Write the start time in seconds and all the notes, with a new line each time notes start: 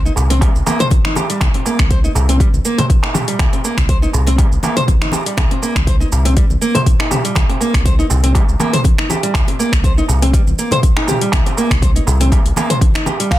0.05 D#4, shaker
0.16 C2, darbuka ka, darbuka tek, darbuka dum, shaker
0.30 C4, closed hi-hat, muted conga, shaker
0.41 G3, kick, closed hi-hat, darbuka tek, shaker
0.55 C2, shaker
0.67 A#3, darbuka tek, high conga, shaker
0.79 C5, closed hi-hat, mid tom, muted conga, shaker
0.91 C2, kick, closed hi-hat, high conga, shaker
1.05 D#4, finger snap, high conga
1.15 G4, muted conga, high conga, darbuka tek, shaker
1.30 G3, closed hi-hat, shaker
1.41 C2, finger snap, kick, closed hi-hat, mid tom, darbuka tek, high conga, shaker
1.54 C4, closed hi-hat, muted conga
1.66 A#3, darbuka ka, shaker
1.79 C2, finger snap, kick, closed hi-hat, high conga, shaker
1.91 C5, kick, closed hi-hat, muted conga, shaker
2.04 D#4, shaker
2.15 C2, darbuka ka, darbuka tek, darbuka dum, shaker
2.29 C4, closed hi-hat, muted conga, shaker
2.40 G3, kick, closed hi-hat, shaker
2.53 C2, high conga, shaker
2.65 A#3, shaker
2.78 C5, closed hi-hat, mid tom, muted conga, darbuka dum, shaker
2.90 C2, kick, closed hi-hat, shaker
3.03 D#4, finger snap, darbuka ka
3.14 G4, mid tom, muted conga, darbuka tek, high conga, shaker
3.28 G3, closed hi-hat, shaker
3.39 C2, finger snap, kick, closed hi-hat, mid tom, darbuka tek, high conga, shaker
3.53 C4, closed hi-hat, darbuka ka, muted conga, shaker
3.64 A#3, darbuka ka, shaker
3.77 C2, finger snap, kick, closed hi-hat, high conga, low conga, shaker
3.89 C5, kick, closed hi-hat, muted conga, shaker
4.02 D#4, shaker
4.13 C2, darbuka ka, darbuka tek, darbuka dum, shaker
4.27 C4, closed hi-hat, muted conga, shaker
4.38 G3, kick, closed hi-hat, darbuka tek, shaker
4.52 C2, shaker
4.63 A#3, high conga, darbuka tek, shaker
4.76 C5, closed hi-hat, mid tom, muted conga, shaker
4.88 C2, kick, closed hi-hat, high conga, shaker
5.01 D#4, finger snap, high conga, shaker
5.12 G4, muted conga, high conga, darbuka tek, shaker
5.26 G3, closed hi-hat, shaker
5.37 C2, finger snap, kick, closed hi-hat, mid tom, high conga, darbuka tek, shaker
5.51 C4, closed hi-hat, muted conga
5.62 A#3, darbuka ka, shaker
5.76 C2, finger snap, kick, closed hi-hat, high conga, shaker
5.87 C5, kick, closed hi-hat, muted conga, shaker
6.00 D#4, shaker
6.12 C2, darbuka ka, darbuka tek, darbuka dum, shaker
6.25 C4, closed hi-hat, muted conga, shaker
6.37 G3, kick, closed hi-hat, shaker
6.50 C2, high conga, shaker
6.61 A#3, shaker
6.75 C5, closed hi-hat, mid tom, muted conga, darbuka dum, shaker
6.86 C2, kick, closed hi-hat, shaker
7.00 D#4, finger snap, darbuka ka
7.11 G4, mid tom, muted conga, darbuka tek, high conga, shaker
7.24 G3, closed hi-hat, shaker
7.35 C2, finger snap, kick, closed hi-hat, mid tom, high conga, darbuka tek, shaker
7.49 C4, closed hi-hat, darbuka ka, muted conga
7.60 A#3, darbuka ka, shaker
7.74 C2, finger snap, kick, closed hi-hat, high conga, low conga, shaker
7.85 C5, kick, closed hi-hat, muted conga, shaker
7.99 D#4, shaker
8.10 C2, darbuka ka, darbuka tek, darbuka dum, shaker
8.24 C4, closed hi-hat, muted conga, shaker
8.35 G3, kick, closed hi-hat, darbuka tek, shaker
8.49 C2, shaker
8.60 A#3, high conga, darbuka tek, shaker
8.73 C5, closed hi-hat, mid tom, muted conga, shaker
8.84 C2, kick, closed hi-hat, high conga, shaker
8.98 D#4, finger snap, high conga
9.09 G4, muted conga, darbuka tek, high conga, shaker
9.23 G3, closed hi-hat, shaker
9.34 C2, finger snap, kick, closed hi-hat, mid tom, darbuka tek, high conga, shaker
9.48 C4, closed hi-hat, muted conga
9.59 A#3, darbuka ka, shaker
9.72 C2, finger snap, kick, closed hi-hat, high conga, shaker
9.84 C5, kick, closed hi-hat, muted conga, shaker
9.98 D#4, shaker
10.08 C2, darbuka ka, darbuka tek, darbuka dum, shaker
10.22 C4, closed hi-hat, muted conga, shaker
10.33 G3, kick, closed hi-hat, shaker
10.47 C2, high conga, shaker
10.59 A#3, shaker
10.71 C5, closed hi-hat, mid tom, muted conga, darbuka dum, shaker
10.83 C2, kick, closed hi-hat, shaker
10.97 D#4, finger snap, darbuka ka
11.07 G4, mid tom, muted conga, darbuka tek, high conga, shaker
11.21 G3, closed hi-hat, shaker
11.32 C2, finger snap, kick, closed hi-hat, mid tom, darbuka tek, high conga, shaker
11.46 C4, closed hi-hat, darbuka ka, muted conga, shaker
11.57 A#3, darbuka ka, shaker
11.71 C2, finger snap, kick, closed hi-hat, high conga, low conga, shaker
11.82 C5, kick, closed hi-hat, muted conga, shaker
11.96 D#4, closed hi-hat, shaker
12.07 C2, darbuka ka, darbuka tek, darbuka dum, shaker
12.20 C4, closed hi-hat, muted conga, shaker
12.32 G3, kick, closed hi-hat, darbuka tek, shaker
12.45 C2, closed hi-hat, shaker
12.56 A#3, high conga, darbuka tek, shaker
12.70 C5, closed hi-hat, mid tom, muted conga, shaker
12.81 C2, kick, closed hi-hat, high conga, shaker
12.94 D#4, finger snap, closed hi-hat, high conga, shaker
13.06 G4, muted conga, high conga, darbuka tek, shaker
13.20 G3, closed hi-hat, shaker
13.31 C2 F5, finger snap, kick, closed hi-hat, mid tom, crash, darbuka tek, high conga, shaker